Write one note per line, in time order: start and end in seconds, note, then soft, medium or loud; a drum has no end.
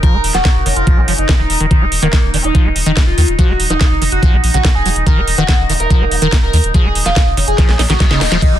0.00 0.15 F3 medium
0.00 8.41 D#4 medium
0.00 1.73 A#4 medium
0.00 0.18 A#4 loud
0.00 kick loud
0.00 closed hi-hat medium
0.14 0.20 D#1 medium
0.14 0.17 A#3 loud
0.24 0.30 D#1 loud
0.24 open hi-hat loud
0.34 0.41 D#1 medium
0.34 0.38 F3 medium
0.34 0.54 F#4 loud
0.34 snare soft
0.45 0.49 A#3 medium
0.45 kick loud
0.45 snare loud
0.45 closed hi-hat medium
0.55 0.62 F1 medium
0.66 0.72 F1 loud
0.66 0.68 D#3 medium
0.66 1.25 C#4 loud
0.66 open hi-hat loud
0.76 0.83 F1 medium
0.76 0.96 F4 loud
0.76 closed hi-hat medium
0.87 0.99 F3 medium
0.87 kick loud
0.87 closed hi-hat medium
0.97 1.04 A#1 medium
0.97 1.01 A#3 loud
1.08 1.14 F#1 loud
1.08 1.14 F3 medium
1.08 open hi-hat loud
1.18 1.25 F#1 loud
1.18 1.28 D#4 medium
1.18 closed hi-hat medium
1.29 1.31 F3 loud
1.29 kick loud
1.29 snare loud
1.29 closed hi-hat medium
1.39 1.46 D#1 medium
1.39 1.42 D#3 medium
1.39 1.54 D#4 loud
1.50 1.56 D#1 medium
1.50 open hi-hat loud
1.60 1.67 D#1 loud
1.60 1.66 D#3 medium
1.60 closed hi-hat medium
1.71 1.83 D#3 medium
1.71 1.86 D#4 loud
1.71 8.44 D#5 medium
1.71 kick loud
1.71 closed hi-hat medium
1.81 1.88 D#1 medium
1.81 1.85 A#3 loud
1.92 1.98 D#1 loud
1.92 open hi-hat loud
2.02 2.09 D#1 medium
2.02 2.08 D#3 loud
2.02 2.20 A#3 medium
2.02 2.22 A#3 loud
2.02 closed hi-hat medium
2.13 2.19 D#3 medium
2.13 kick loud
2.13 snare loud
2.13 closed hi-hat medium
2.23 2.30 D#1 medium
2.34 2.40 D#1 loud
2.34 2.38 D#3 medium
2.34 2.52 C#4 loud
2.34 open hi-hat loud
2.44 2.50 D#1 medium
2.44 2.64 D#4 loud
2.44 closed hi-hat medium
2.55 2.67 F3 medium
2.55 kick loud
2.55 closed hi-hat medium
2.65 2.71 D#1 medium
2.65 2.69 A#3 loud
2.76 2.82 D#1 loud
2.76 open hi-hat loud
2.86 2.92 D#1 loud
2.86 2.92 D#3 loud
2.86 2.96 D#4 medium
2.86 closed hi-hat medium
2.97 3.01 A#3 medium
2.97 kick loud
2.97 snare loud
2.97 closed hi-hat medium
3.07 3.13 D#1 medium
3.07 3.22 F4 medium
3.18 3.24 D#2 medium
3.18 3.22 D#3 medium
3.18 open hi-hat loud
3.28 3.34 D#1 loud
3.28 closed hi-hat medium
3.39 3.51 F3 medium
3.39 3.54 F#4 loud
3.39 kick loud
3.39 closed hi-hat medium
3.49 3.55 D#1 medium
3.49 3.53 A#3 loud
3.60 3.66 D#1 loud
3.60 open hi-hat loud
3.70 3.76 D#1 medium
3.70 3.74 F3 medium
3.70 3.77 A#3 medium
3.70 3.90 D#4 loud
3.70 closed hi-hat medium
3.81 3.87 A#3 medium
3.81 3.85 A#3 medium
3.81 kick loud
3.81 snare loud
3.81 closed hi-hat medium
3.91 3.97 F1 medium
4.02 4.08 F1 medium
4.02 4.04 D#3 medium
4.02 open hi-hat loud
4.12 4.18 F1 medium
4.12 4.32 F#4 loud
4.12 closed hi-hat medium
4.23 4.35 F3 medium
4.23 kick loud
4.23 closed hi-hat medium
4.33 4.39 A#1 medium
4.33 4.37 A#3 loud
4.44 4.50 A#1 loud
4.44 open hi-hat loud
4.54 4.60 A#1 medium
4.54 4.58 C#3 medium
4.54 4.64 F#4 medium
4.54 closed hi-hat medium
4.65 4.68 D#3 medium
4.65 kick loud
4.65 snare loud
4.65 closed hi-hat medium
4.75 4.81 D#1 medium
4.75 4.90 G#4 loud
4.86 4.92 D#1 loud
4.86 4.89 F#3 medium
4.86 open hi-hat loud
4.96 5.02 D#1 loud
4.96 closed hi-hat medium
5.07 5.19 D#3 medium
5.07 5.21 A#4 loud
5.07 kick loud
5.07 closed hi-hat medium
5.17 5.23 D#1 medium
5.17 5.21 A#3 loud
5.27 5.34 D#1 loud
5.27 open hi-hat loud
5.38 5.44 D#1 loud
5.38 5.44 D#3 loud
5.38 5.56 A#3 loud
5.38 5.58 F#4 loud
5.38 closed hi-hat medium
5.49 5.54 D#3 medium
5.49 kick loud
5.49 snare loud
5.49 closed hi-hat medium
5.59 5.65 D#1 medium
5.69 5.76 D#1 loud
5.69 5.73 D#3 medium
5.69 5.76 G#3 loud
5.69 open hi-hat loud
5.80 5.86 D#1 medium
5.80 5.87 G#3 medium
5.80 6.00 A#4 loud
5.80 closed hi-hat medium
5.90 6.02 F3 medium
5.90 kick loud
5.90 closed hi-hat medium
6.01 6.07 D#1 medium
6.01 6.05 A#3 loud
6.01 6.19 A#3 medium
6.11 6.18 D#1 loud
6.11 open hi-hat medium
6.22 6.28 D#1 medium
6.22 6.28 D#3 loud
6.22 6.32 A#4 medium
6.22 closed hi-hat medium
6.32 6.36 A#3 medium
6.32 kick loud
6.32 snare loud
6.32 closed hi-hat medium
6.43 6.49 D#1 medium
6.43 6.58 A#4 loud
6.53 6.60 D#2 loud
6.53 6.57 D#3 medium
6.53 open hi-hat loud
6.64 6.70 D#1 loud
6.64 closed hi-hat medium
6.74 6.86 F3 medium
6.74 6.89 G#4 loud
6.74 kick loud
6.74 closed hi-hat medium
6.85 6.91 D#1 medium
6.85 6.89 A#3 loud
6.95 7.02 D#1 loud
6.95 open hi-hat loud
7.06 7.12 D#1 medium
7.06 7.10 F3 medium
7.06 7.26 F4 loud
7.06 snare soft
7.06 closed hi-hat medium
7.16 7.20 A#3 medium
7.16 kick loud
7.16 snare loud
7.16 closed hi-hat medium
7.27 7.33 F1 medium
7.37 7.43 F1 loud
7.37 7.40 D#3 medium
7.37 7.96 C#4 loud
7.37 open hi-hat loud
7.48 7.54 F1 medium
7.48 7.68 G#4 loud
7.48 closed hi-hat medium
7.58 7.70 F3 medium
7.58 kick loud
7.58 snare medium
7.58 closed hi-hat medium
7.58 reverse cymbal medium
7.69 7.75 A#1 medium
7.69 7.73 A#3 loud
7.69 snare medium
7.79 7.85 A#1 loud
7.79 7.82 D#4 loud
7.79 snare medium
7.79 open hi-hat loud
7.90 7.96 A#1 loud
7.90 7.94 D#3 loud
7.90 8.00 F#4 medium
7.90 snare medium
7.90 closed hi-hat medium
8.00 8.06 F#3 medium
8.00 kick loud
8.00 snare medium
8.00 closed hi-hat medium
8.11 8.17 D#1 medium
8.11 8.23 C#3 loud
8.11 8.26 D#4 loud
8.11 snare medium
8.21 8.27 D#1 loud
8.21 8.24 D#3 medium
8.21 snare loud
8.21 open hi-hat loud
8.32 8.38 D#1 loud
8.32 8.38 F3 loud
8.32 snare medium
8.32 closed hi-hat medium
8.42 8.54 D#3 medium
8.42 8.57 D#4 loud
8.42 8.60 D#4 medium
8.42 8.60 A#4 medium
8.42 kick loud
8.42 closed hi-hat medium
8.42 ride medium
8.53 8.59 D#1 medium
8.53 8.57 A#3 loud